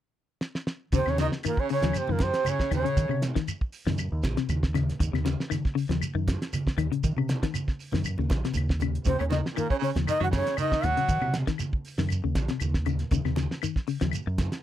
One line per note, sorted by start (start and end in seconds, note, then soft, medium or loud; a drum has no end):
0.41 snare medium
0.55 snare medium
0.67 snare medium
0.92 1.04 D#2 medium
0.92 1.09 C3 medium
0.92 1.02 C#3 medium
0.92 1.11 C5 medium
0.92 kick medium
0.92 closed hi-hat medium
0.92 low conga medium
0.92 shekere medium
0.96 1.11 C4 medium
1.06 1.28 D#2 medium
1.06 1.15 C3 medium
1.06 1.18 C#3 medium
1.06 1.20 C#4 medium
1.06 1.20 C#5 medium
1.06 snare soft
1.06 claves medium
1.18 1.35 C#3 medium
1.18 1.30 D#3 medium
1.18 1.32 D#4 medium
1.18 1.27 D#5 loud
1.18 snare medium
1.18 closed hi-hat medium
1.18 high conga medium
1.18 shekere soft
1.32 snare medium
1.43 1.62 A#2 medium
1.43 1.61 D#3 medium
1.43 1.61 A#3 medium
1.43 1.61 A#4 medium
1.43 closed hi-hat medium
1.43 claves medium
1.43 shekere medium
1.57 1.71 C#3 medium
1.57 1.70 C#4 medium
1.57 1.70 C#5 medium
1.57 kick medium
1.69 1.79 C#3 medium
1.69 1.99 C#3 medium
1.69 2.00 C#4 medium
1.69 1.99 C#5 medium
1.69 open hi-hat medium
1.69 shekere soft
1.81 1.93 D#2 medium
1.81 2.00 F3 medium
1.81 snare medium
1.81 closed hi-hat soft
1.81 high conga medium
1.93 closed hi-hat medium
1.93 claves medium
1.93 shekere medium
1.97 2.13 C3 medium
1.97 2.13 C4 medium
1.97 2.14 C5 medium
2.07 2.30 F#2 medium
2.07 2.22 A#2 medium
2.07 2.25 D#3 medium
2.07 2.27 A#3 medium
2.07 high conga medium
2.12 2.24 A#4 medium
2.19 2.50 C3 medium
2.19 kick medium
2.19 snare medium
2.19 closed hi-hat medium
2.19 high conga loud
2.19 shekere soft
2.23 2.50 C4 medium
2.23 2.51 C5 medium
2.34 snare medium
2.34 closed hi-hat medium
2.45 2.72 C#3 medium
2.45 closed hi-hat medium
2.45 high conga medium
2.45 claves medium
2.45 shekere medium
2.49 2.73 C#4 medium
2.49 2.73 C#5 medium
2.60 kick medium
2.60 snare medium
2.71 2.82 D#2 medium
2.71 3.19 C#3 medium
2.71 2.80 D#3 medium
2.71 3.20 C#4 medium
2.71 3.20 C#5 medium
2.71 closed hi-hat medium
2.71 high conga medium
2.71 low conga medium
2.71 claves medium
2.71 shekere soft
2.84 3.01 C#3 medium
2.84 closed hi-hat medium
2.97 3.08 D#3 medium
2.97 kick loud
2.97 closed hi-hat medium
2.97 low conga medium
2.97 shekere medium
3.09 3.31 C3 medium
3.09 3.26 C#3 medium
3.09 claves medium
3.22 snare medium
3.22 closed hi-hat medium
3.22 high conga medium
3.22 shekere soft
3.35 3.52 D#3 medium
3.35 kick medium
3.35 snare medium
3.35 closed hi-hat soft
3.48 closed hi-hat medium
3.48 claves medium
3.48 shekere medium
3.61 kick medium
3.72 open hi-hat medium
3.72 shekere soft
3.86 4.07 F#2 medium
3.86 4.03 D#3 medium
3.86 snare medium
3.86 high conga medium
3.86 low conga medium
3.98 closed hi-hat medium
3.98 claves medium
3.98 shekere medium
4.12 4.21 D#2 loud
4.23 4.35 A#1 medium
4.23 kick medium
4.23 snare medium
4.23 closed hi-hat soft
4.23 high conga loud
4.23 shekere soft
4.37 4.53 C3 medium
4.37 snare medium
4.37 closed hi-hat medium
4.49 4.91 D#2 medium
4.49 closed hi-hat medium
4.49 high conga medium
4.49 claves medium
4.49 shekere medium
4.63 kick medium
4.63 snare medium
4.74 4.91 C#3 medium
4.74 snare soft
4.74 closed hi-hat medium
4.74 high conga medium
4.74 low conga medium
4.74 claves medium
4.74 shekere soft
4.89 snare soft
4.89 closed hi-hat medium
5.00 5.11 D#2 loud
5.00 muted clean electric guitar stroke medium
5.00 kick medium
5.00 closed hi-hat medium
5.00 low conga medium
5.00 shekere medium
5.13 5.34 D#2 medium
5.13 5.21 C3 medium
5.13 snare soft
5.13 high conga medium
5.13 claves medium
5.25 5.41 C#3 medium
5.25 snare medium
5.25 closed hi-hat medium
5.25 high conga medium
5.25 shekere soft
5.40 snare medium
5.50 5.66 D#3 medium
5.50 snare soft
5.50 closed hi-hat medium
5.50 high conga medium
5.50 claves medium
5.50 shekere medium
5.65 kick medium
5.65 snare soft
5.75 5.84 C#3 medium
5.75 open hi-hat medium
5.75 shekere soft
5.89 5.99 D#2 medium
5.89 6.05 F3 medium
5.89 snare medium
5.89 closed hi-hat medium
5.89 high conga medium
6.01 closed hi-hat medium
6.01 claves medium
6.01 shekere medium
6.15 6.36 F#2 medium
6.15 6.31 D#3 medium
6.28 kick medium
6.28 snare medium
6.28 closed hi-hat medium
6.28 high conga medium
6.28 shekere soft
6.42 snare medium
6.42 closed hi-hat medium
6.53 closed hi-hat medium
6.53 high conga medium
6.53 claves medium
6.53 shekere medium
6.67 kick medium
6.67 snare medium
6.77 6.89 D#2 medium
6.77 6.86 D#3 medium
6.77 closed hi-hat medium
6.77 low conga medium
6.77 claves medium
6.77 shekere soft
6.92 7.08 C#3 medium
6.92 closed hi-hat medium
7.03 7.15 D#3 loud
7.03 kick medium
7.03 closed hi-hat medium
7.03 low conga medium
7.03 shekere medium
7.16 7.37 C3 medium
7.16 7.34 C#3 medium
7.16 claves medium
7.28 snare medium
7.28 closed hi-hat medium
7.28 high conga medium
7.28 shekere soft
7.43 7.59 D#3 medium
7.43 kick medium
7.43 snare medium
7.43 closed hi-hat medium
7.54 closed hi-hat medium
7.54 high conga medium
7.54 claves medium
7.54 shekere medium
7.68 kick medium
7.68 snare soft
7.80 open hi-hat medium
7.80 shekere soft
7.92 8.14 F#2 medium
7.92 8.09 D#3 medium
7.92 snare medium
7.92 high conga medium
7.92 low conga medium
8.04 closed hi-hat medium
8.04 claves medium
8.04 shekere medium
8.18 8.28 D#2 medium
8.18 8.35 C#3 medium
8.18 high conga medium
8.30 8.41 A#1 medium
8.30 kick medium
8.30 snare medium
8.30 closed hi-hat medium
8.30 high conga loud
8.30 shekere soft
8.45 8.61 C3 medium
8.45 snare medium
8.45 closed hi-hat medium
8.54 8.97 D#2 medium
8.54 closed hi-hat medium
8.54 high conga medium
8.54 claves medium
8.54 shekere medium
8.69 kick medium
8.69 snare medium
8.80 8.98 C#3 medium
8.80 closed hi-hat medium
8.80 high conga medium
8.80 low conga medium
8.80 claves medium
8.80 shekere soft
8.95 closed hi-hat soft
9.05 9.17 D#2 loud
9.05 9.17 C3 medium
9.05 9.16 C#3 medium
9.05 9.20 C4 medium
9.05 9.19 C5 medium
9.05 kick medium
9.05 closed hi-hat medium
9.05 low conga medium
9.05 shekere medium
9.18 9.41 D#2 medium
9.18 9.24 C#3 medium
9.18 9.25 C#5 medium
9.18 muted clean electric guitar stroke medium
9.18 claves medium
9.22 9.27 C#4 medium
9.29 9.48 C#3 medium
9.29 9.41 D#3 medium
9.29 9.37 D#5 medium
9.29 snare medium
9.29 closed hi-hat soft
9.29 high conga medium
9.29 shekere soft
9.36 9.46 D#4 medium
9.46 snare medium
9.53 9.67 A#2 medium
9.53 9.73 D#3 medium
9.53 closed hi-hat medium
9.53 claves medium
9.58 9.70 A#3 medium
9.58 9.70 A#4 medium
9.58 shekere medium
9.70 9.75 C#3 medium
9.70 9.77 C#4 medium
9.70 9.76 C#5 medium
9.70 kick medium
9.79 9.91 C#3 medium
9.79 open hi-hat medium
9.83 9.89 C#5 medium
9.83 shekere soft
9.87 9.97 C#4 medium
9.95 10.05 D#2 medium
9.95 10.12 F3 medium
9.95 snare medium
9.95 closed hi-hat soft
9.95 high conga medium
10.07 10.19 D#3 medium
10.07 10.22 D#4 medium
10.07 10.21 D#5 medium
10.07 closed hi-hat medium
10.07 claves medium
10.07 shekere medium
10.20 10.42 F#2 medium
10.20 10.37 D#3 medium
10.20 10.25 F#3 medium
10.20 10.28 F#5 loud
10.20 high conga medium
10.25 10.29 F#4 medium
10.31 10.55 C#3 medium
10.31 kick medium
10.31 snare medium
10.31 closed hi-hat medium
10.31 high conga medium
10.31 shekere soft
10.35 10.58 C#4 medium
10.35 10.58 C#5 medium
10.47 snare medium
10.47 closed hi-hat medium
10.56 10.87 D#3 medium
10.56 10.86 D#5 medium
10.56 closed hi-hat medium
10.56 high conga medium
10.56 claves medium
10.56 shekere medium
10.61 10.88 D#4 medium
10.72 kick medium
10.72 snare medium
10.82 10.95 D#2 loud
10.82 10.93 D#3 medium
10.82 11.35 F#3 medium
10.82 11.35 F#5 medium
10.82 closed hi-hat medium
10.82 low conga medium
10.82 claves medium
10.82 shekere soft
10.87 11.36 F#4 medium
10.97 11.13 C#3 medium
10.97 snare soft
10.97 closed hi-hat medium
11.08 11.20 D#3 medium
11.08 kick medium
11.08 closed hi-hat medium
11.08 low conga medium
11.08 shekere medium
11.21 11.43 C3 medium
11.21 muted clean electric guitar stroke medium
11.21 high conga medium
11.21 claves medium
11.34 snare medium
11.34 closed hi-hat medium
11.34 high conga medium
11.34 shekere soft
11.47 11.64 D#3 medium
11.47 kick medium
11.47 snare medium
11.47 closed hi-hat soft
11.58 snare soft
11.58 closed hi-hat medium
11.58 high conga medium
11.58 claves medium
11.58 shekere medium
11.73 kick medium
11.85 open hi-hat medium
11.85 shekere soft
11.98 12.20 F#2 medium
11.98 12.15 D#3 medium
11.98 snare medium
11.98 high conga medium
12.09 closed hi-hat medium
12.09 claves medium
12.09 shekere medium
12.24 12.34 D#2 medium
12.24 12.40 C#3 medium
12.35 12.47 A#1 medium
12.35 kick medium
12.35 snare medium
12.35 closed hi-hat medium
12.35 high conga medium
12.35 shekere soft
12.48 12.66 C3 medium
12.48 snare medium
12.48 closed hi-hat medium
12.60 13.03 D#2 medium
12.60 closed hi-hat medium
12.60 high conga medium
12.60 claves medium
12.60 shekere medium
12.74 kick medium
12.74 snare medium
12.86 13.03 C#3 medium
12.86 closed hi-hat medium
12.86 high conga medium
12.86 low conga medium
12.86 claves medium
12.86 shekere soft
12.99 snare soft
12.99 closed hi-hat soft
13.11 13.23 D#2 loud
13.11 13.21 C#3 medium
13.11 kick loud
13.11 closed hi-hat medium
13.11 low conga medium
13.11 shekere loud
13.25 13.46 D#2 medium
13.25 13.33 C3 medium
13.25 snare soft
13.25 high conga medium
13.25 claves medium
13.36 13.53 C#3 medium
13.36 snare medium
13.36 closed hi-hat soft
13.36 high conga medium
13.36 shekere soft
13.51 snare medium
13.62 13.79 D#3 medium
13.62 snare soft
13.62 closed hi-hat medium
13.62 claves medium
13.62 shekere medium
13.76 kick medium
13.76 snare soft
13.87 13.97 C#3 medium
13.87 open hi-hat medium
13.87 shekere soft
14.01 14.11 D#2 loud
14.01 14.18 F3 medium
14.01 snare medium
14.01 closed hi-hat medium
14.01 high conga medium
14.01 low conga medium
14.11 closed hi-hat medium
14.11 claves medium
14.11 shekere loud
14.27 14.48 F#2 medium
14.27 muted clean electric guitar stroke medium
14.38 kick medium
14.38 snare medium
14.38 closed hi-hat soft
14.38 high conga medium
14.38 shekere soft
14.52 snare medium
14.52 closed hi-hat soft